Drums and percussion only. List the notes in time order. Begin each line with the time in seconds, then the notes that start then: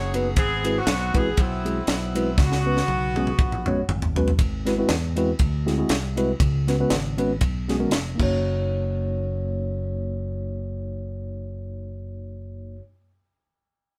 0.14 ride bell
0.36 kick, ride bell
0.65 ride bell
0.87 snare, ride bell
1.14 kick, ride bell
1.37 kick, ride bell
1.66 ride bell
1.87 snare, ride bell
2.15 ride bell
2.38 kick, snare
2.52 snare
2.77 snare
2.88 high tom
3.16 high tom
3.27 mid tom
3.39 kick
3.52 mid tom
3.66 mid tom
3.89 mid tom
4.02 floor tom
4.16 floor tom
4.28 floor tom
4.39 kick, ride bell
4.66 snare, ride bell
4.89 snare, ride bell
5.17 ride bell
5.39 kick, ride bell
5.68 snare, ride bell
5.89 snare, ride bell
6.17 ride bell
6.40 kick, ride bell
6.68 snare, ride bell
6.90 snare, ride bell
7.18 ride bell
7.41 kick, ride bell
7.69 snare, ride bell
7.91 snare, ride bell
8.20 kick, crash